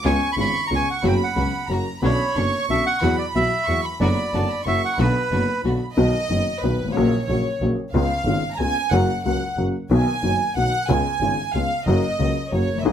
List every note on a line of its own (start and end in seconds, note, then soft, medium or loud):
0.04 0.19 C#2 medium
0.04 0.19 C#3 medium
0.04 0.19 G#3 medium
0.04 0.18 B3 medium
0.04 0.19 B3 medium
0.04 0.18 C#4 medium
0.04 0.18 F4 medium
0.04 0.19 F4 medium
0.04 0.31 G#5 medium
0.04 1.04 C#6 medium
0.32 0.35 B5 medium
0.37 0.51 G#1 soft
0.37 0.51 G#1 medium
0.37 0.52 G#2 soft
0.37 0.51 C#3 soft
0.37 0.51 G#3 soft
0.37 0.51 B3 soft
0.37 0.52 B3 soft
0.37 0.52 C#4 soft
0.37 0.52 F4 medium
0.37 0.52 F4 soft
0.37 0.64 B5 medium
0.67 0.85 C#2 medium
0.67 0.85 C#3 soft
0.67 0.84 G#3 soft
0.67 0.84 B3 soft
0.67 0.85 B3 soft
0.67 0.84 C#4 soft
0.67 0.84 F4 soft
0.67 0.70 A#5 medium
0.71 0.85 C#2 soft
0.71 0.85 F4 soft
0.76 0.89 G#5 medium
0.90 1.04 F#5 medium
1.03 1.18 F#1 medium
1.03 1.18 F#2 medium
1.03 1.17 C#3 medium
1.03 1.17 F#3 medium
1.03 1.17 B3 medium
1.03 1.18 B3 medium
1.03 1.18 C#4 medium
1.03 1.17 F#4 medium
1.03 1.18 F#4 medium
1.03 1.70 B5 medium
1.08 1.14 G5 medium
1.23 1.68 F#5 medium
1.36 1.50 C#2 medium
1.36 1.50 C#2 soft
1.36 1.50 C#3 soft
1.36 1.50 F#3 soft
1.36 1.50 B3 soft
1.36 1.51 B3 soft
1.36 1.51 C#4 soft
1.36 1.50 F#4 soft
1.36 1.51 F#4 soft
1.69 1.83 F#1 soft
1.69 1.83 F#2 soft
1.69 1.83 C#3 soft
1.69 1.84 F#3 soft
1.69 1.83 A#3 soft
1.69 1.84 A#3 soft
1.69 1.84 C#4 soft
1.69 1.84 F#4 soft
1.69 2.02 A#5 medium
2.02 2.16 B1 medium
2.02 2.16 B2 medium
2.02 2.16 D3 medium
2.02 2.16 B3 medium
2.02 2.17 B3 medium
2.02 2.17 C#4 medium
2.02 2.17 D4 medium
2.02 2.17 F#4 medium
2.02 2.66 C#5 medium
2.02 2.34 B5 medium
2.36 2.50 F#1 medium
2.36 2.50 F#1 soft
2.36 2.50 F#2 soft
2.36 2.50 D3 soft
2.36 2.50 B3 soft
2.36 2.50 C#4 soft
2.36 2.50 D4 soft
2.36 2.50 F#4 soft
2.36 3.02 C#6 medium
2.68 2.83 B1 soft
2.68 2.83 B2 soft
2.68 2.83 D3 soft
2.68 2.82 B3 soft
2.68 2.83 B3 soft
2.68 2.82 C#4 soft
2.68 2.83 C#4 soft
2.68 2.83 D4 soft
2.68 2.83 F#4 soft
2.68 2.85 E5 medium
2.86 3.16 F#5 medium
3.01 3.15 E2 medium
3.01 3.16 E2 medium
3.01 3.16 E3 medium
3.01 3.16 F#3 medium
3.01 3.15 B3 medium
3.01 3.16 B3 medium
3.01 3.15 E4 medium
3.01 3.15 F#4 medium
3.01 3.16 F#4 medium
3.01 3.67 B5 medium
3.19 3.26 D5 medium
3.35 3.48 B1 medium
3.35 3.49 B1 soft
3.35 3.49 B2 soft
3.35 3.49 E3 soft
3.35 3.49 F#3 soft
3.35 3.48 B3 soft
3.35 3.49 B3 soft
3.35 3.49 E4 soft
3.35 3.48 F#4 soft
3.35 3.49 F#4 soft
3.35 3.81 E5 medium
3.66 3.81 E2 medium
3.66 3.81 E2 soft
3.66 3.81 E3 soft
3.66 3.81 F#3 soft
3.66 3.81 B3 soft
3.66 3.82 B3 soft
3.66 3.82 E4 soft
3.66 3.81 F#4 soft
3.66 3.83 C#6 medium
3.85 4.00 B5 medium
4.00 4.14 F#1 medium
4.00 4.14 F#2 medium
4.00 4.14 D3 medium
4.00 4.14 F#3 medium
4.00 4.14 B3 medium
4.00 4.14 D4 medium
4.00 4.14 F#4 medium
4.00 4.62 D5 medium
4.00 4.31 B5 medium
4.33 4.47 F#1 medium
4.33 4.47 F#2 medium
4.33 4.47 D3 soft
4.33 4.47 F#3 soft
4.33 4.47 B3 soft
4.33 4.47 D4 soft
4.33 4.47 F#4 soft
4.33 4.50 A5 medium
4.50 4.66 B5 medium
4.65 4.80 F#1 soft
4.65 4.80 F#2 soft
4.65 4.80 C#3 soft
4.65 4.80 F#3 soft
4.65 4.79 A#3 soft
4.65 4.80 A#3 soft
4.65 4.79 E4 soft
4.65 4.80 E4 soft
4.65 4.79 F#4 soft
4.65 4.82 E5 medium
4.65 4.96 C#6 medium
4.85 4.99 F#5 medium
4.98 5.12 B1 medium
4.98 5.13 B2 medium
4.98 5.12 D3 medium
4.98 5.12 F#3 medium
4.98 5.12 B3 medium
4.98 5.13 B3 medium
4.98 5.12 D4 medium
4.98 5.12 F#4 medium
4.98 5.13 F#4 medium
4.98 5.61 B4 medium
4.98 5.80 B5 medium
5.31 5.45 F#1 medium
5.31 5.45 F#1 soft
5.31 5.45 F#2 soft
5.31 5.45 D3 soft
5.31 5.45 F#3 soft
5.31 5.45 B3 soft
5.31 5.45 D4 soft
5.31 5.45 F#4 soft
5.64 5.78 B1 soft
5.64 5.78 B2 soft
5.64 5.78 D3 soft
5.64 5.78 F#3 soft
5.64 5.78 B3 soft
5.64 5.78 D4 soft
5.64 5.78 F#4 soft
5.95 6.11 B1 medium
5.95 6.11 B2 medium
5.95 6.11 D#3 medium
5.95 6.11 F#3 medium
5.95 6.11 B3 medium
5.95 6.11 F#4 medium
5.95 6.58 D#5 medium
6.31 6.44 F#1 medium
6.31 6.44 F#2 medium
6.31 6.44 D#3 soft
6.31 6.44 F#3 soft
6.31 6.44 B3 soft
6.31 6.44 F#4 soft
6.61 6.76 B1 soft
6.61 6.77 B1 soft
6.61 6.77 B2 medium
6.61 6.77 D#3 soft
6.61 6.77 F#3 soft
6.61 6.77 B3 soft
6.61 6.77 F#4 soft
6.61 6.95 B4 medium
6.79 6.95 G#1 medium
6.84 6.88 G1 soft
6.84 6.92 G#1 medium
6.92 6.96 A1 medium
6.92 7.09 A#1 medium
6.92 7.26 C#5 medium
6.96 7.10 A#1 medium
6.96 7.10 A#2 medium
6.96 7.10 C#3 medium
6.96 7.10 F#3 medium
6.96 7.10 A#3 medium
6.96 7.10 F#4 medium
7.27 7.42 A#1 medium
7.27 7.43 A#1 soft
7.27 7.43 A#2 soft
7.27 7.42 C#3 soft
7.27 7.43 F#3 soft
7.27 7.43 A#3 soft
7.27 7.43 F#4 medium
7.27 7.58 C#5 medium
7.60 7.74 A#1 medium
7.60 7.75 A#1 medium
7.60 7.75 A#2 soft
7.60 7.75 C#3 soft
7.60 7.75 F#3 soft
7.60 7.75 A#3 soft
7.60 7.75 F#4 soft
7.93 8.07 C#2 medium
7.93 8.08 C#2 medium
7.93 8.08 C#3 medium
7.93 8.08 G#3 medium
7.93 8.08 B3 medium
7.93 8.08 F4 medium
7.93 8.49 F5 medium
8.25 8.40 G#1 medium
8.25 8.41 G#1 medium
8.25 8.41 G#2 medium
8.25 8.40 C#3 soft
8.25 8.40 G#3 soft
8.25 8.41 B3 soft
8.25 8.41 F4 medium
8.53 8.91 G#5 loud
8.53 8.60 A#5 medium
8.59 8.73 C#2 soft
8.59 8.73 C#2 medium
8.59 8.74 C#3 soft
8.59 8.73 G#3 soft
8.59 8.73 B3 soft
8.59 8.74 F4 soft
8.92 9.06 F#1 medium
8.92 9.06 F#2 medium
8.92 9.06 C#3 medium
8.92 9.07 F#3 medium
8.92 9.07 A#3 medium
8.92 9.07 F#4 medium
8.92 9.24 F#5 medium
9.25 9.39 C#2 medium
9.25 9.39 C#3 medium
9.25 9.39 F#3 soft
9.25 9.39 A#3 soft
9.25 9.39 F#4 soft
9.25 9.56 F#5 medium
9.57 9.71 F#1 medium
9.57 9.72 F#2 medium
9.57 9.72 C#3 soft
9.57 9.72 F#3 soft
9.57 9.72 A#3 soft
9.57 9.72 F#4 soft
9.90 10.04 B1 medium
9.90 10.05 B1 medium
9.90 10.05 B2 medium
9.90 10.05 D#3 medium
9.90 10.05 F#3 medium
9.90 10.05 B3 medium
9.90 10.05 F#4 medium
9.90 10.54 G#5 medium
10.23 10.38 F#1 medium
10.23 10.38 F#2 soft
10.23 10.37 D#3 soft
10.23 10.38 F#3 soft
10.23 10.37 B3 soft
10.23 10.37 F#4 soft
10.56 10.70 B1 medium
10.56 10.71 B1 soft
10.56 10.71 B2 medium
10.56 10.70 D#3 soft
10.56 10.71 F#3 soft
10.56 10.71 B3 soft
10.56 10.71 F#4 soft
10.56 10.90 F#5 medium
10.88 11.03 C#2 medium
10.88 11.03 C#3 medium
10.88 11.03 G#3 medium
10.88 11.03 B3 medium
10.88 11.03 F4 medium
10.88 11.55 G#5 medium
11.21 11.35 G#1 medium
11.21 11.36 G#1 medium
11.21 11.36 G#2 medium
11.21 11.35 C#3 soft
11.21 11.36 G#3 soft
11.21 11.36 B3 soft
11.21 11.36 F4 soft
11.54 11.68 C#2 medium
11.54 11.69 C#2 soft
11.54 11.69 C#3 soft
11.54 11.69 G#3 soft
11.54 11.69 B3 soft
11.54 11.69 F4 medium
11.54 11.87 F5 medium
11.87 12.01 F#1 medium
11.87 12.01 F#2 medium
11.87 12.01 C#3 medium
11.87 12.01 F#3 medium
11.87 12.01 A#3 medium
11.87 12.01 F#4 medium
11.87 12.48 D#5 medium
12.19 12.33 C#2 medium
12.19 12.34 C#2 medium
12.19 12.33 C#3 medium
12.19 12.33 F#3 soft
12.19 12.34 A#3 soft
12.19 12.34 F#4 medium
12.52 12.67 F#1 medium
12.52 12.66 F#2 medium
12.52 12.66 C#3 soft
12.52 12.66 F#3 medium
12.52 12.66 A#3 soft
12.52 12.66 F#4 soft
12.52 12.79 C#5 medium
12.69 12.85 F#1 medium
12.74 12.77 F1 soft
12.74 12.81 F#1 medium
12.80 12.86 G1 medium
12.80 12.86 E5 medium
12.85 12.92 G#1 medium
12.85 12.92 G#2 medium
12.85 12.92 D#3 medium
12.85 12.92 G#3 medium
12.85 12.92 B3 medium
12.85 12.92 G#4 medium
12.85 12.92 D#5 medium